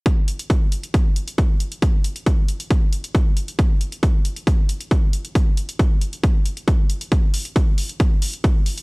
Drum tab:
HH |x-xxx-xxx-xxx-xx|x-xxx-xxx-xxx-xx|x-xxx-xxx-xxx-xx|x-xxx-xxx-xxx-xx|
BD |o---o---o---o---|o---o---o---o---|o---o---o---o---|o---o---o---o---|

HH |x-oxx-oxx-oxx-ox|
BD |o---o---o---o---|